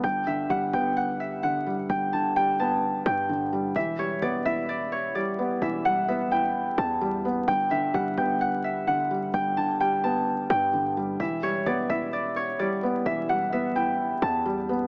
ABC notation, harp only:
X:1
M:4/4
L:1/8
Q:1/4=129
K:Em
V:1 name="Harp"
g e f g f e f z | g a g a2 g3 | e ^c d e d c d z | e f e g2 a3 |
g e f g f e f z | g a g a2 g3 | e ^c d e d c d z | e f e g2 a3 |]